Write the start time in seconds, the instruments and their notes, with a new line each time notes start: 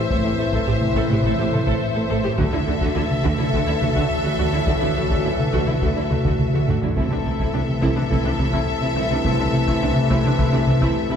Already playing: trombone section A2 E3, analog synth pad E3 A3 E4 C5, french horn section C4 E4, violin section C5 E5
0.09 double bass section A1, analog synth bass A2, cello section A2, synth pluck A3, viola section A4, taiko
0.24 analog synth bass A2, cello section A2, viola section G4, synth pluck A4
0.38 double bass section A1, cello section A2, analog synth bass A3, synth pluck E4, viola section A4
0.52 analog synth bass A2, cello section A2, synth pluck A3, viola section A4, taiko
0.67 double bass section A1, analog synth bass A2, cello section A2, synth pluck C4, viola section G4
0.81 analog synth bass A3, taiko mid
0.95 double bass section A1, analog synth bass A2, cello section A2, synth pluck A3, viola section A4, taiko
1.10 cello section A2, analog synth bass A3, synth pluck E4, viola section G4, taiko mid
1.24 double bass section A1, analog synth bass A2, cello section A2, synth pluck A3, viola section A4, taiko
1.39 analog synth bass A2, cello section A2, viola section G4, synth pluck A4
1.53 double bass section A1, analog synth bass A2, cello section A2, viola section A4, synth pluck A4, taiko mid
1.67 analog synth bass A2, cello section A2, synth pluck A3, viola section A4, taiko
1.82 analog synth bass A2
1.96 cello section A2, analog synth bass A3, synth pluck E4, viola section A4
2.09 double bass section A1, cello section A2, analog synth bass A2, synth pluck A3, viola section A4
2.23 cello section A2, analog synth bass A2, synth pluck C4, viola section G4
2.37 double bass section D2, analog synth bass D2, trombone section A2 E3, cello section D3, synth pluck D3, analog synth pad E3 A3 F#4 A4, french horn section A3 F#4, viola section F#4, violin section A4 E5, taiko
2.52 analog synth bass D2, cello section D3, synth pluck D4, viola section E4
2.67 double bass section D2, cello section D3, analog synth bass D3, synth pluck A3, viola section F#4
2.81 analog synth bass D2, synth pluck D3, cello section D3, viola section F#4, taiko
2.95 analog synth bass D2, double bass section D2, cello section D3, synth pluck F#3, viola section E4
3.10 analog synth bass D3, taiko mid
3.24 analog synth bass D2, double bass section D2, synth pluck D3, cello section D3, viola section F#4, taiko
3.38 analog synth bass D3, cello section D3, synth pluck A3, viola section E4, taiko mid
3.52 analog synth bass D2, double bass section D2, synth pluck D3, cello section D3, viola section F#4, taiko
3.67 analog synth bass D2, cello section D3, synth pluck D4, viola section E4
3.81 analog synth bass D2, double bass section D2, cello section D3, synth pluck D4, viola section F#4, taiko mid
3.95 analog synth bass D2, cello section D3, synth pluck D3, viola section F#4, taiko
4.10 analog synth bass D2
4.24 analog synth bass D3, cello section D3, synth pluck A3, viola section F#4
4.38 analog synth bass D2, double bass section D2, cello section D3, synth pluck D3, viola section F#4
4.53 analog synth bass D2, cello section D3, synth pluck F#3, viola section E4
4.67 analog synth bass D2, double bass section D2, cello section D3, synth pluck D3, viola section F#4, taiko
4.81 analog synth bass D2, cello section D3, synth pluck D4, viola section E4
4.95 double bass section D2, analog synth bass D3, cello section D3, synth pluck A3, viola section F#4
5.10 analog synth bass D2, synth pluck D3, cello section D3, viola section F#4, taiko
5.25 double bass section D2, analog synth bass D2, cello section D3, synth pluck F#3, viola section E4
5.39 analog synth bass D3, taiko mid
5.52 analog synth bass D2, double bass section D2, synth pluck D3, cello section D3, viola section F#4, taiko
5.67 analog synth bass D3, cello section D3, synth pluck A3, viola section E4, taiko mid
5.82 double bass section D2, analog synth bass D2, synth pluck D3, cello section D3, viola section F#4, taiko
5.96 analog synth bass D2, cello section D3, synth pluck D4, viola section E4
6.10 analog synth bass D2, double bass section D2, cello section D3, synth pluck D4, viola section F#4, taiko mid
6.25 analog synth bass D2, synth pluck D3, cello section D3, viola section F#4, taiko
6.39 analog synth bass D2, taiko mid
6.53 analog synth bass D3, cello section D3, synth pluck A3, viola section F#4, taiko mid
6.67 double bass section D2, analog synth bass D2, synth pluck D3, cello section D3, viola section F#4, taiko low-mid
6.82 analog synth bass D2, cello section D3, synth pluck F#3, viola section E4, taiko low
6.96 double bass section C2, analog synth bass C2, trombone section C3 E3, cello section C3, analog synth pad E3 A3 E4 A4, synth pluck A3, french horn section A3 E4, viola section E4, violin section A4 E5, taiko
7.11 analog synth bass C2, cello section C3, viola section D4, synth pluck A4
7.25 double bass section C2, cello section C3, analog synth bass C3, synth pluck E4, viola section E4
7.39 analog synth bass C2, cello section C3, synth pluck A3, viola section E4, taiko
7.53 double bass section C2, analog synth bass C2, cello section C3, synth pluck C4, viola section D4
7.68 analog synth bass C3, taiko mid
7.81 double bass section C2, analog synth bass C2, cello section C3, synth pluck A3, viola section E4, taiko
7.96 analog synth bass C3, cello section C3, viola section D4, synth pluck E4, taiko mid
8.10 analog synth bass C2, double bass section C2, cello section C3, synth pluck A3, viola section E4, taiko
8.24 analog synth bass C2, cello section C3, viola section D4, synth pluck A4
8.39 analog synth bass C2, double bass section C2, cello section C3, viola section E4, synth pluck A4, taiko mid
8.53 analog synth bass C2, cello section C3, synth pluck A3, viola section E4, taiko
8.68 analog synth bass C2
8.81 cello section C3, analog synth bass C3, synth pluck E4, viola section E4
8.95 analog synth bass C2, double bass section C2, cello section C3, synth pluck A3, viola section E4
9.10 analog synth bass C2, cello section C3, synth pluck C4, viola section D4
9.24 analog synth bass C2, double bass section C2, cello section C3, synth pluck A3, viola section E4, taiko
9.39 analog synth bass C2, cello section C3, viola section D4, synth pluck A4
9.53 double bass section C2, cello section C3, analog synth bass C3, viola section E4, synth pluck E4
9.67 analog synth bass C2, cello section C3, synth pluck A3, viola section E4, taiko
9.82 double bass section C2, analog synth bass C2, cello section C3, synth pluck C4, viola section D4
9.96 analog synth bass C3, taiko mid
10.10 analog synth bass C2, double bass section C2, cello section C3, synth pluck A3, viola section E4, taiko
10.24 analog synth bass C3, cello section C3, viola section D4, synth pluck E4, taiko mid
10.39 double bass section C2, analog synth bass C2, cello section C3, synth pluck A3, viola section E4, taiko
10.53 analog synth bass C2, cello section C3, viola section D4, synth pluck A4
10.67 analog synth bass C2, double bass section C2, cello section C3, viola section E4, synth pluck A4, taiko mid
10.81 analog synth bass C2, cello section C3, synth pluck A3, viola section E4, taiko
10.96 analog synth bass C2
11.10 analog synth bass C3, cello section C3, synth pluck E4, viola section E4